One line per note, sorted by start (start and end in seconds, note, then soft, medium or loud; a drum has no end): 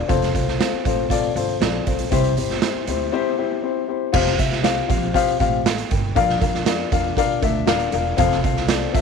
0.08 0.29 F1 medium
0.08 0.28 C4 loud
0.08 0.29 F4 loud
0.08 0.29 A4 loud
0.08 0.29 C5 loud
0.08 kick loud
0.08 closed hi-hat medium
0.22 snare soft
0.22 closed hi-hat soft
0.34 0.55 C2 medium
0.34 0.54 C4 medium
0.34 0.54 F4 medium
0.34 0.55 A4 medium
0.34 0.55 C5 medium
0.34 kick medium
0.34 closed hi-hat medium
0.48 snare soft
0.59 0.79 C4 medium
0.59 0.80 F4 medium
0.59 0.80 A4 medium
0.59 0.80 C5 medium
0.59 snare loud
0.59 closed hi-hat medium
0.72 muted upright bass stroke soft
0.85 1.26 A1 medium
0.85 1.05 C4 medium
0.85 1.05 F4 medium
0.85 1.05 A4 medium
0.85 1.06 C5 loud
0.85 kick loud
0.85 closed hi-hat medium
1.10 1.30 C4 loud
1.10 1.30 F4 loud
1.10 1.30 A4 loud
1.10 1.31 D5 loud
1.10 kick medium
1.10 closed hi-hat medium
1.35 1.56 G1 medium
1.35 1.55 C4 medium
1.35 1.56 F4 medium
1.35 1.56 A4 medium
1.35 1.56 C5 loud
1.35 closed hi-hat medium
1.60 1.81 A#1 medium
1.60 1.81 C4 medium
1.60 1.81 F4 medium
1.60 1.82 A4 medium
1.60 1.82 D5 medium
1.60 snare loud
1.60 closed hi-hat medium
1.86 2.07 B1 medium
1.86 2.06 C4 medium
1.86 2.06 F4 medium
1.86 2.07 A4 medium
1.86 2.07 C5 medium
1.86 kick medium
1.86 closed hi-hat medium
1.99 closed hi-hat medium
2.11 2.32 C2 loud
2.11 2.31 C4 loud
2.11 2.32 E4 loud
2.11 2.32 G4 loud
2.11 2.32 C5 loud
2.11 kick loud
2.11 closed hi-hat medium
2.24 closed hi-hat soft
2.37 2.57 G1 medium
2.37 2.57 C4 medium
2.37 2.57 E4 medium
2.37 2.57 G4 medium
2.37 2.57 C5 medium
2.37 closed hi-hat medium
2.50 snare soft
2.62 2.82 C4 medium
2.62 2.82 E4 medium
2.62 2.82 G4 medium
2.62 2.82 C5 medium
2.62 snare loud
2.62 closed hi-hat medium
2.75 muted upright bass stroke soft
2.87 3.08 D2 medium
2.87 3.07 C4 medium
2.87 3.08 E4 medium
2.87 3.08 G4 medium
2.87 3.08 C5 medium
2.87 closed hi-hat medium
3.12 3.32 C4 loud
3.12 3.33 E4 loud
3.12 3.33 G4 loud
3.12 3.33 C5 loud
3.37 3.57 C4 medium
3.37 3.58 E4 medium
3.37 3.58 G4 medium
3.37 3.58 C5 loud
3.62 3.82 C4 medium
3.62 3.83 E4 medium
3.62 3.83 G4 medium
3.62 3.83 C5 medium
3.88 4.08 C4 medium
3.88 4.08 E4 medium
3.88 4.08 G4 medium
3.88 4.09 C5 medium
4.13 4.34 F1 loud
4.13 4.33 C4 loud
4.13 4.33 F4 loud
4.13 4.33 G4 loud
4.13 4.34 C5 loud
4.13 4.34 F5 loud
4.13 kick loud
4.13 crash loud
4.27 snare soft
4.38 4.80 C2 medium
4.38 4.58 C4 medium
4.38 4.58 F4 medium
4.38 4.58 G4 medium
4.38 4.59 C5 medium
4.38 4.59 E5 medium
4.38 kick medium
4.38 closed hi-hat medium
4.52 snare soft
4.63 4.83 C4 medium
4.63 4.83 F4 medium
4.63 4.84 G4 medium
4.63 4.84 C5 medium
4.63 4.84 F5 loud
4.63 snare loud
4.63 closed hi-hat medium
4.88 5.10 A#1 medium
4.88 5.09 C4 medium
4.88 5.09 F4 medium
4.88 5.09 G4 medium
4.88 5.09 C5 medium
4.88 5.09 F5 loud
4.88 kick loud
4.88 closed hi-hat medium
5.14 5.34 C4 loud
5.14 5.34 F4 loud
5.14 5.34 G4 loud
5.14 5.35 C5 loud
5.14 5.35 F5 loud
5.14 kick medium
5.14 closed hi-hat medium
5.28 muted upright bass stroke soft
5.28 closed hi-hat soft
5.39 5.81 A1 medium
5.39 5.59 C4 loud
5.39 5.60 F4 medium
5.39 5.60 G4 medium
5.39 5.60 C5 medium
5.39 5.60 F5 loud
5.39 kick medium
5.39 closed hi-hat medium
5.66 5.90 A4 medium
5.66 snare loud
5.66 closed hi-hat medium
5.78 closed hi-hat medium
5.91 6.11 G1 medium
5.91 6.15 A#4 medium
5.91 6.39 G5 medium
5.91 kick loud
5.91 closed hi-hat medium
6.15 6.36 A#1 loud
6.15 6.35 D4 loud
6.15 6.36 F4 loud
6.15 6.36 A#4 loud
6.15 6.36 D5 loud
6.15 6.36 F5 loud
6.15 kick loud
6.15 closed hi-hat medium
6.29 snare soft
6.40 6.82 F2 medium
6.40 6.61 D4 medium
6.40 6.61 F4 medium
6.40 6.61 A#4 medium
6.40 6.61 D5 medium
6.40 6.62 F5 medium
6.40 kick loud
6.40 closed hi-hat medium
6.55 snare soft
6.66 6.86 D4 medium
6.66 6.86 F4 medium
6.66 6.86 A#4 medium
6.66 6.86 D5 medium
6.66 6.87 F5 medium
6.66 snare loud
6.66 closed hi-hat loud
6.92 7.12 E2 medium
6.92 7.12 D4 medium
6.92 7.12 F4 medium
6.92 7.12 A#4 medium
6.92 7.12 D5 medium
6.92 7.12 F5 loud
6.92 kick loud
6.92 closed hi-hat medium
7.17 7.37 D4 loud
7.17 7.37 F4 loud
7.17 7.37 A#4 loud
7.17 7.38 D5 loud
7.17 7.38 F5 loud
7.17 kick medium
7.17 closed hi-hat medium
7.30 muted upright bass stroke soft
7.42 7.63 D2 medium
7.42 7.62 D4 loud
7.42 7.62 F4 medium
7.42 7.62 A#4 medium
7.42 7.62 D5 medium
7.42 7.63 E5 loud
7.42 kick loud
7.42 closed hi-hat medium
7.66 7.88 D#1 medium
7.66 7.87 D4 loud
7.66 7.87 F4 loud
7.66 7.87 A#4 loud
7.66 7.88 D5 loud
7.66 7.88 F5 loud
7.66 snare loud
7.66 closed hi-hat medium
7.80 closed hi-hat medium
7.92 8.14 E1 medium
7.92 8.12 D4 medium
7.92 8.13 F4 medium
7.92 8.13 A#4 medium
7.92 8.13 D5 medium
7.92 8.13 F5 medium
7.92 closed hi-hat medium
8.17 8.39 F1 loud
8.17 8.38 C4 loud
8.17 8.38 F4 loud
8.17 8.38 A4 loud
8.17 8.38 C5 loud
8.17 8.38 F5 loud
8.17 kick loud
8.17 closed hi-hat medium
8.32 snare soft
8.42 8.63 C4 medium
8.42 8.63 F4 medium
8.42 8.63 A4 medium
8.42 8.63 C5 medium
8.42 8.64 F5 loud
8.42 kick loud
8.42 closed hi-hat medium
8.57 snare soft
8.68 8.88 C4 medium
8.68 8.89 F4 medium
8.68 8.89 A4 medium
8.68 8.89 C5 medium
8.68 8.89 D5 medium
8.68 snare loud
8.68 closed hi-hat loud
8.93 9.01 A#1 medium
8.93 9.01 C4 loud
8.93 9.01 F4 medium
8.93 9.01 A4 medium
8.93 9.01 C5 medium
8.93 9.01 E5 loud
8.93 kick loud
8.93 closed hi-hat medium